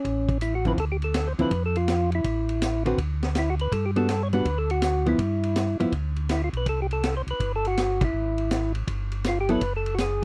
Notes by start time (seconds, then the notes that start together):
Already playing: C#4
0.04 A1, kick, ride
0.29 kick, ride
0.41 E4, hi-hat pedal, ride
0.55 F#4
0.65 D3 F3 C4 E4 B4, kick, ride
0.77 D2 A4, kick, ride
0.92 G4
1.02 A4, ride
1.14 snare, hi-hat pedal, ride
1.27 C5
1.38 D2 D3 F3 C4 E4 B4, ride
1.51 F2, kick, ride
1.66 A4
1.75 F4, ride
1.88 snare, hi-hat pedal, ride
2.12 E4, ride
2.24 A1, kick, ride
2.49 ride
2.62 snare, hi-hat pedal, ride
2.86 D3 C4 F#4 B4, ride
2.97 D2, kick, ride
3.23 snare, ride
3.35 E4, snare, hi-hat pedal, ride
3.50 F#4
3.59 B4, ride
3.72 G2 A4, kick, ride
3.86 G4
3.96 G3 B3 D4 F#4 A4, ride
4.09 snare, hi-hat pedal, ride
4.23 C#5
4.33 G3 B3 D4 F#4 B4, ride
4.45 D2, kick, ride
4.58 A4
4.70 F#4, ride
4.82 snare, hi-hat pedal, ride
5.06 F3 B3 E4, ride
5.18 G2, kick, ride
5.43 ride
5.56 snare, hi-hat pedal, ride
5.80 G2 F3 B3 E4, ride
5.92 D2, kick, ride
6.16 ride
6.29 E4, snare, hi-hat pedal, ride
6.44 F4
6.53 B1, ride
6.57 B4
6.66 C2 A4, kick, ride
6.82 G4
6.91 A4, ride
7.03 snare, hi-hat pedal, ride
7.17 C5
7.27 C2 B4, ride
7.40 G1, kick, ride
7.56 A4
7.65 F#4, ride
7.77 snare, hi-hat pedal, ride
8.01 E4, kick, ride
8.13 G#1
8.38 ride
8.51 snare, hi-hat pedal, ride
8.75 ride
8.87 G1, kick, ride
9.11 ride
9.24 F4, snare, hi-hat pedal, ride
9.41 G4
9.49 F#3 B3 E4 A4 B4, ride
9.61 F#1, kick, ride
9.76 A4
9.86 ride
9.94 F#4, hi-hat pedal, ride
9.98 G#4, snare